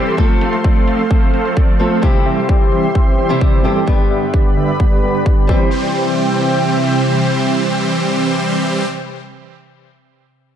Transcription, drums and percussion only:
0.18 kick, closed hi-hat
0.30 closed hi-hat
0.41 closed hi-hat
0.53 closed hi-hat
0.64 kick, closed hi-hat
0.76 closed hi-hat
0.88 closed hi-hat
0.99 closed hi-hat
1.11 kick, closed hi-hat
1.22 closed hi-hat
1.34 closed hi-hat
1.45 closed hi-hat
1.57 kick, closed hi-hat
1.68 closed hi-hat
1.80 closed hi-hat
2.03 kick
2.14 closed hi-hat
2.26 closed hi-hat
2.38 closed hi-hat
2.49 kick
2.61 closed hi-hat
2.72 closed hi-hat
2.84 closed hi-hat
2.95 kick
3.07 closed hi-hat
3.18 closed hi-hat
3.30 closed hi-hat
3.41 kick
3.53 closed hi-hat
3.88 kick
4.11 closed hi-hat
4.22 closed hi-hat
4.34 kick
4.45 closed hi-hat
4.57 closed hi-hat
4.68 closed hi-hat
4.80 kick
5.03 closed hi-hat
5.26 kick
5.49 kick

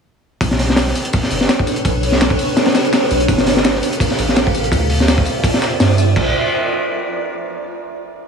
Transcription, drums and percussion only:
0.41 kick, open hi-hat, tambourine
0.51 snare, closed hi-hat
0.59 snare, open hi-hat
0.70 snare
0.76 snare, open hi-hat, tambourine
0.87 snare
0.95 open hi-hat, tambourine
1.05 closed hi-hat
1.13 kick, open hi-hat, tambourine
1.23 snare
1.30 open hi-hat, tambourine
1.41 snare
1.49 snare, open hi-hat, tambourine
1.59 kick
1.67 open hi-hat, tambourine
1.76 closed hi-hat
1.85 kick, open hi-hat, tambourine
2.03 open hi-hat, tambourine
2.12 snare
2.21 snare, open hi-hat, tambourine
2.30 kick
2.39 open hi-hat, tambourine
2.57 snare, open hi-hat, tambourine
2.66 snare, open hi-hat
2.75 snare, open hi-hat, tambourine
2.85 closed hi-hat
2.93 snare, open hi-hat, tambourine
3.03 snare
3.11 open hi-hat, tambourine
3.20 closed hi-hat
3.28 kick, open hi-hat, tambourine
3.38 snare, closed hi-hat
3.47 snare, open hi-hat
3.56 snare
3.65 snare, open hi-hat, tambourine
3.74 snare
3.83 open hi-hat, tambourine
3.93 closed hi-hat
4.00 kick, open hi-hat, tambourine
4.11 snare
4.19 open hi-hat, tambourine
4.29 snare
4.36 snare, open hi-hat, tambourine
4.47 kick
4.54 open hi-hat, tambourine
4.64 closed hi-hat
4.72 kick, open hi-hat, tambourine
4.90 open hi-hat
5.00 snare
5.08 snare, open hi-hat, tambourine
5.18 kick
5.25 open hi-hat, tambourine
5.44 kick, open hi-hat, tambourine
5.54 snare
5.62 snare, tambourine
5.80 snare, open hi-hat, tambourine
5.98 tambourine
6.16 kick, crash

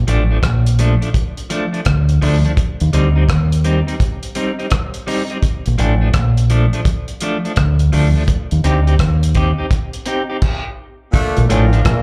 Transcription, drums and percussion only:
0.08 closed hi-hat
0.43 kick, cross-stick, closed hi-hat
0.66 closed hi-hat
0.79 closed hi-hat
1.02 closed hi-hat
1.14 kick, closed hi-hat
1.37 closed hi-hat
1.50 closed hi-hat
1.74 closed hi-hat
1.85 kick, cross-stick, closed hi-hat
2.09 closed hi-hat
2.22 open hi-hat
2.45 closed hi-hat
2.57 kick, closed hi-hat
2.80 closed hi-hat
2.93 closed hi-hat
3.29 kick, cross-stick, closed hi-hat
3.52 closed hi-hat
3.64 closed hi-hat
3.88 closed hi-hat
4.00 kick, closed hi-hat
4.23 closed hi-hat
4.35 closed hi-hat
4.59 closed hi-hat
4.70 kick, cross-stick, closed hi-hat
4.94 closed hi-hat
5.08 open hi-hat
5.30 closed hi-hat
5.43 kick, closed hi-hat
5.66 closed hi-hat
5.79 closed hi-hat
6.14 kick, cross-stick, closed hi-hat
6.37 closed hi-hat
6.50 closed hi-hat
6.73 closed hi-hat
6.85 kick, closed hi-hat
7.08 closed hi-hat
7.21 closed hi-hat
7.45 closed hi-hat
7.56 kick, cross-stick, closed hi-hat
7.79 closed hi-hat
7.93 open hi-hat
8.28 kick, closed hi-hat
8.51 closed hi-hat
8.64 closed hi-hat
8.87 closed hi-hat
8.99 kick, cross-stick, closed hi-hat
9.23 closed hi-hat
9.35 kick, closed hi-hat
9.71 kick, closed hi-hat
9.93 closed hi-hat
10.06 closed hi-hat
10.42 kick, crash
11.14 kick, closed hi-hat
11.37 closed hi-hat
11.50 closed hi-hat
11.73 closed hi-hat
11.85 kick, cross-stick, closed hi-hat

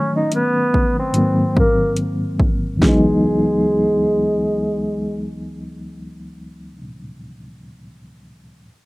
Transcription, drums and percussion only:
0.32 closed hi-hat
0.74 kick
1.14 closed hi-hat
1.57 kick
1.97 closed hi-hat
2.40 kick
2.82 kick, snare

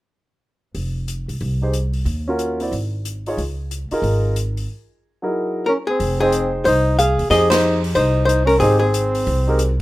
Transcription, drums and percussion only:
0.75 open hi-hat
1.08 closed hi-hat
1.29 open hi-hat
1.41 open hi-hat
1.73 closed hi-hat
1.93 open hi-hat
2.06 open hi-hat
2.39 closed hi-hat
2.60 open hi-hat
2.73 open hi-hat
3.05 closed hi-hat
3.26 open hi-hat
3.38 open hi-hat
3.71 closed hi-hat
3.91 open hi-hat
4.04 open hi-hat
4.36 closed hi-hat
4.57 open hi-hat
6.00 open hi-hat
6.32 closed hi-hat
6.66 open hi-hat
6.99 closed hi-hat
7.19 open hi-hat
7.31 snare, open hi-hat
7.51 snare, ride
7.84 open hi-hat
7.96 open hi-hat
8.29 closed hi-hat
8.49 open hi-hat
8.60 open hi-hat
8.94 closed hi-hat
9.15 open hi-hat
9.27 open hi-hat
9.59 closed hi-hat

